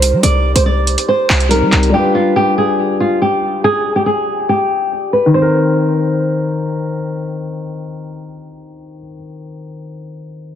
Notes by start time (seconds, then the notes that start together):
Already playing: C2 G3 C4 D#4 A#4 C5
0.02 closed hi-hat
0.13 G3
0.23 C2 D5, closed hi-hat
0.55 C2 C5, closed hi-hat
0.66 D5
0.87 closed hi-hat
0.98 closed hi-hat
1.08 C5
1.30 C2, clap
1.40 closed hi-hat
1.49 G3 C4 D#4 A#4, closed hi-hat
1.53 A#4
1.62 G3
1.72 C2, clap, closed hi-hat
1.83 closed hi-hat
1.90 G3 D4
1.94 F4 G4
1.98 B4
2.15 F4
2.36 G4
2.58 G#4
3.00 F4
3.22 G4
3.64 G#4
3.96 G4
4.06 G#4
4.49 G4
5.13 B4
5.26 D#3
5.34 C4 C5
5.42 A#4